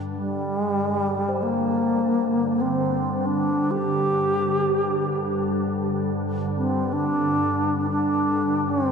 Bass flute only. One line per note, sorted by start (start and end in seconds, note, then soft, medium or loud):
0.14 0.60 G3 medium
0.60 0.72 G#3 medium
0.72 0.86 G3 medium
0.86 0.98 G#3 medium
0.98 1.44 G3 medium
1.43 2.63 A#3 medium
2.61 3.27 C4 medium
3.26 3.73 D4 medium
3.71 5.64 G4 medium
6.57 6.95 C4 medium
6.93 7.90 D4 medium
7.90 8.72 D4 medium
8.70 8.92 C4 medium